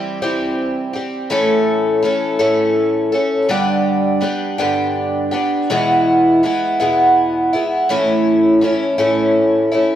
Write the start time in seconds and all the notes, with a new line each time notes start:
Already playing: E3 G3 C4 G4
0.22 C3 E3 G3 C4 G4
0.93 G3 C4 G4
1.30 A2 E3 A3 C#4 A4
2.03 E3 A3 C#4 A4
2.39 A2 E3 A3 C#4 A4
3.12 A3 C#4 A4
3.49 G2 D3 G3 B3 D4 G4
4.21 G3 B3 D4 G4
4.58 G2 D3 G3 B3 D4 G4
5.31 G3 B3 D4 G4
5.70 E2 B2 E3 G#3 B3 E4
6.43 E3 G#3 B3 E4
6.80 E2 B2 E3 G#3 B3 E4
7.53 E3 G#3 B3 E4
7.89 A2 E3 A3 C#4 E4
8.61 E3 A3 C#4 E4
8.98 A2 E3 A3 C#4 E4
9.72 A3 C#4 E4